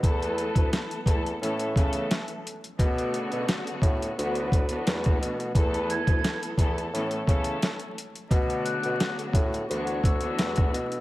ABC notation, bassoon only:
X:1
M:4/4
L:1/16
Q:"Swing 16ths" 1/4=87
K:Bm
V:1 name="Bassoon" clef=bass
E,,3 D,, z2 E,,2 A,,2 C,2 z4 | B,,3 B,, z2 A,,2 D,,2 D,,2 E,,2 B,,2 | E,,3 D,, z2 E,,2 A,,2 C,2 z4 | B,,3 B,, z2 A,,2 D,,2 D,,2 E,,2 B,,2 |]